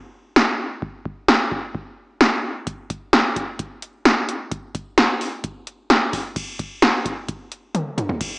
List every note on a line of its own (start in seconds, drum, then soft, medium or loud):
0.36 snare loud
0.82 kick loud
1.05 kick medium
1.28 snare loud
1.52 kick medium
1.75 kick medium
2.21 snare loud
2.67 kick loud
2.67 closed hi-hat medium
2.90 kick medium
2.90 closed hi-hat medium
3.13 snare loud
3.13 closed hi-hat medium
3.36 kick medium
3.36 closed hi-hat medium
3.59 kick medium
3.59 closed hi-hat medium
3.82 closed hi-hat medium
4.05 snare loud
4.05 closed hi-hat medium
4.29 closed hi-hat medium
4.51 kick loud
4.51 closed hi-hat medium
4.75 kick medium
4.75 closed hi-hat medium
4.98 snare loud
4.98 closed hi-hat medium
5.21 open hi-hat medium
5.44 kick medium
5.44 closed hi-hat medium
5.67 closed hi-hat medium
5.90 snare loud
5.90 closed hi-hat medium
6.13 kick medium
6.13 open hi-hat medium
6.36 kick loud
6.36 closed hi-hat medium
6.36 crash medium
6.59 kick medium
6.59 closed hi-hat medium
6.82 snare loud
6.82 closed hi-hat medium
7.05 kick medium
7.05 closed hi-hat medium
7.28 kick medium
7.28 closed hi-hat medium
7.52 closed hi-hat medium
7.75 closed hi-hat medium
7.75 high tom medium
7.98 closed hi-hat medium
7.98 mid tom medium
8.09 floor tom medium
8.21 kick loud
8.21 closed hi-hat medium
8.21 crash loud